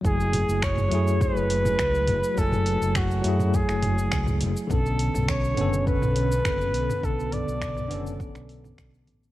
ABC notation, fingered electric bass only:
X:1
M:4/4
L:1/16
Q:1/4=103
K:F#m
V:1 name="Fingered electric bass" clef=bass
F,,,3 F,,,3 F,,3 F,,,3 C,,2 F,,, z | F,,,3 F,,,3 F,,3 F,,,3 C,,2 F,,, z | B,,,3 B,,,3 F,,,3 B,,,3 F,,,2 B,,, z | B,,,3 B,,,3 F,,,3 B,,,3 B,,,2 A,,, z |]